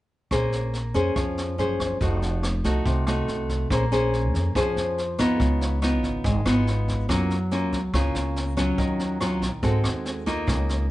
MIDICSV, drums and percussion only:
0, 0, Header, 1, 2, 480
1, 0, Start_track
1, 0, Key_signature, -5, "minor"
1, 0, Tempo, 423131
1, 362, Time_signature, 4, 2, 24, 8
1, 12374, End_track
2, 0, Start_track
2, 0, Title_t, "Drums"
2, 351, Note_on_c, 9, 37, 52
2, 351, Note_on_c, 9, 38, 21
2, 353, Note_on_c, 9, 36, 50
2, 465, Note_off_c, 9, 37, 0
2, 465, Note_off_c, 9, 38, 0
2, 467, Note_off_c, 9, 36, 0
2, 592, Note_on_c, 9, 38, 22
2, 705, Note_off_c, 9, 38, 0
2, 833, Note_on_c, 9, 38, 21
2, 946, Note_off_c, 9, 38, 0
2, 1073, Note_on_c, 9, 38, 22
2, 1075, Note_on_c, 9, 36, 23
2, 1187, Note_off_c, 9, 38, 0
2, 1188, Note_off_c, 9, 36, 0
2, 1314, Note_on_c, 9, 37, 52
2, 1314, Note_on_c, 9, 38, 22
2, 1316, Note_on_c, 9, 36, 56
2, 1428, Note_off_c, 9, 37, 0
2, 1428, Note_off_c, 9, 38, 0
2, 1430, Note_off_c, 9, 36, 0
2, 1560, Note_on_c, 9, 38, 25
2, 1674, Note_off_c, 9, 38, 0
2, 1803, Note_on_c, 9, 38, 23
2, 1916, Note_off_c, 9, 38, 0
2, 2038, Note_on_c, 9, 36, 23
2, 2041, Note_on_c, 9, 37, 53
2, 2041, Note_on_c, 9, 38, 22
2, 2152, Note_off_c, 9, 36, 0
2, 2154, Note_off_c, 9, 37, 0
2, 2154, Note_off_c, 9, 38, 0
2, 2276, Note_on_c, 9, 38, 19
2, 2278, Note_on_c, 9, 36, 56
2, 2389, Note_off_c, 9, 38, 0
2, 2391, Note_off_c, 9, 36, 0
2, 2520, Note_on_c, 9, 38, 22
2, 2633, Note_off_c, 9, 38, 0
2, 2757, Note_on_c, 9, 37, 53
2, 2757, Note_on_c, 9, 38, 22
2, 2871, Note_off_c, 9, 37, 0
2, 2871, Note_off_c, 9, 38, 0
2, 2995, Note_on_c, 9, 38, 22
2, 2998, Note_on_c, 9, 36, 22
2, 3109, Note_off_c, 9, 38, 0
2, 3112, Note_off_c, 9, 36, 0
2, 3239, Note_on_c, 9, 36, 58
2, 3239, Note_on_c, 9, 38, 22
2, 3352, Note_off_c, 9, 38, 0
2, 3353, Note_off_c, 9, 36, 0
2, 3479, Note_on_c, 9, 37, 57
2, 3479, Note_on_c, 9, 38, 23
2, 3593, Note_off_c, 9, 37, 0
2, 3593, Note_off_c, 9, 38, 0
2, 3721, Note_on_c, 9, 38, 23
2, 3834, Note_off_c, 9, 38, 0
2, 3961, Note_on_c, 9, 36, 21
2, 3962, Note_on_c, 9, 38, 21
2, 4075, Note_off_c, 9, 36, 0
2, 4076, Note_off_c, 9, 38, 0
2, 4202, Note_on_c, 9, 36, 52
2, 4202, Note_on_c, 9, 37, 51
2, 4202, Note_on_c, 9, 38, 22
2, 4315, Note_off_c, 9, 37, 0
2, 4315, Note_off_c, 9, 38, 0
2, 4316, Note_off_c, 9, 36, 0
2, 4448, Note_on_c, 9, 38, 26
2, 4561, Note_off_c, 9, 38, 0
2, 4690, Note_on_c, 9, 38, 22
2, 4804, Note_off_c, 9, 38, 0
2, 4925, Note_on_c, 9, 36, 23
2, 4929, Note_on_c, 9, 38, 25
2, 5038, Note_off_c, 9, 36, 0
2, 5043, Note_off_c, 9, 38, 0
2, 5165, Note_on_c, 9, 36, 58
2, 5168, Note_on_c, 9, 37, 54
2, 5168, Note_on_c, 9, 38, 24
2, 5278, Note_off_c, 9, 36, 0
2, 5281, Note_off_c, 9, 37, 0
2, 5281, Note_off_c, 9, 38, 0
2, 5407, Note_on_c, 9, 38, 23
2, 5521, Note_off_c, 9, 38, 0
2, 5649, Note_on_c, 9, 38, 23
2, 5762, Note_off_c, 9, 38, 0
2, 5884, Note_on_c, 9, 36, 22
2, 5886, Note_on_c, 9, 37, 55
2, 5886, Note_on_c, 9, 38, 23
2, 5997, Note_off_c, 9, 36, 0
2, 5999, Note_off_c, 9, 37, 0
2, 5999, Note_off_c, 9, 38, 0
2, 6123, Note_on_c, 9, 36, 52
2, 6123, Note_on_c, 9, 38, 21
2, 6236, Note_off_c, 9, 38, 0
2, 6237, Note_off_c, 9, 36, 0
2, 6364, Note_on_c, 9, 38, 24
2, 6477, Note_off_c, 9, 38, 0
2, 6604, Note_on_c, 9, 37, 54
2, 6604, Note_on_c, 9, 38, 22
2, 6717, Note_off_c, 9, 37, 0
2, 6717, Note_off_c, 9, 38, 0
2, 6844, Note_on_c, 9, 36, 23
2, 6847, Note_on_c, 9, 38, 24
2, 6957, Note_off_c, 9, 36, 0
2, 6961, Note_off_c, 9, 38, 0
2, 7083, Note_on_c, 9, 36, 59
2, 7084, Note_on_c, 9, 38, 23
2, 7197, Note_off_c, 9, 36, 0
2, 7197, Note_off_c, 9, 38, 0
2, 7324, Note_on_c, 9, 37, 60
2, 7324, Note_on_c, 9, 38, 23
2, 7437, Note_off_c, 9, 37, 0
2, 7437, Note_off_c, 9, 38, 0
2, 7568, Note_on_c, 9, 38, 23
2, 7681, Note_off_c, 9, 38, 0
2, 7804, Note_on_c, 9, 36, 25
2, 7806, Note_on_c, 9, 38, 23
2, 7918, Note_off_c, 9, 36, 0
2, 7920, Note_off_c, 9, 38, 0
2, 8045, Note_on_c, 9, 36, 51
2, 8047, Note_on_c, 9, 37, 56
2, 8047, Note_on_c, 9, 38, 22
2, 8158, Note_off_c, 9, 36, 0
2, 8160, Note_off_c, 9, 37, 0
2, 8160, Note_off_c, 9, 38, 0
2, 8285, Note_on_c, 9, 38, 22
2, 8398, Note_off_c, 9, 38, 0
2, 8525, Note_on_c, 9, 38, 23
2, 8639, Note_off_c, 9, 38, 0
2, 8763, Note_on_c, 9, 38, 24
2, 8764, Note_on_c, 9, 36, 23
2, 8876, Note_off_c, 9, 38, 0
2, 8877, Note_off_c, 9, 36, 0
2, 9003, Note_on_c, 9, 36, 53
2, 9004, Note_on_c, 9, 37, 58
2, 9004, Note_on_c, 9, 38, 23
2, 9117, Note_off_c, 9, 36, 0
2, 9117, Note_off_c, 9, 37, 0
2, 9117, Note_off_c, 9, 38, 0
2, 9241, Note_on_c, 9, 38, 24
2, 9354, Note_off_c, 9, 38, 0
2, 9484, Note_on_c, 9, 38, 22
2, 9597, Note_off_c, 9, 38, 0
2, 9723, Note_on_c, 9, 36, 23
2, 9723, Note_on_c, 9, 37, 53
2, 9723, Note_on_c, 9, 38, 23
2, 9836, Note_off_c, 9, 36, 0
2, 9836, Note_off_c, 9, 37, 0
2, 9836, Note_off_c, 9, 38, 0
2, 9962, Note_on_c, 9, 38, 23
2, 9963, Note_on_c, 9, 36, 54
2, 10075, Note_off_c, 9, 38, 0
2, 10077, Note_off_c, 9, 36, 0
2, 10201, Note_on_c, 9, 38, 25
2, 10315, Note_off_c, 9, 38, 0
2, 10442, Note_on_c, 9, 37, 58
2, 10442, Note_on_c, 9, 38, 23
2, 10555, Note_off_c, 9, 37, 0
2, 10555, Note_off_c, 9, 38, 0
2, 10684, Note_on_c, 9, 36, 26
2, 10685, Note_on_c, 9, 38, 24
2, 10798, Note_off_c, 9, 36, 0
2, 10799, Note_off_c, 9, 38, 0
2, 10924, Note_on_c, 9, 36, 55
2, 10924, Note_on_c, 9, 38, 23
2, 11038, Note_off_c, 9, 36, 0
2, 11038, Note_off_c, 9, 38, 0
2, 11160, Note_on_c, 9, 37, 61
2, 11160, Note_on_c, 9, 38, 23
2, 11274, Note_off_c, 9, 37, 0
2, 11274, Note_off_c, 9, 38, 0
2, 11405, Note_on_c, 9, 38, 24
2, 11519, Note_off_c, 9, 38, 0
2, 11645, Note_on_c, 9, 36, 23
2, 11648, Note_on_c, 9, 38, 23
2, 11759, Note_off_c, 9, 36, 0
2, 11761, Note_off_c, 9, 38, 0
2, 11884, Note_on_c, 9, 36, 57
2, 11886, Note_on_c, 9, 37, 52
2, 11886, Note_on_c, 9, 38, 22
2, 11997, Note_off_c, 9, 36, 0
2, 11999, Note_off_c, 9, 37, 0
2, 11999, Note_off_c, 9, 38, 0
2, 12127, Note_on_c, 9, 38, 23
2, 12240, Note_off_c, 9, 38, 0
2, 12374, End_track
0, 0, End_of_file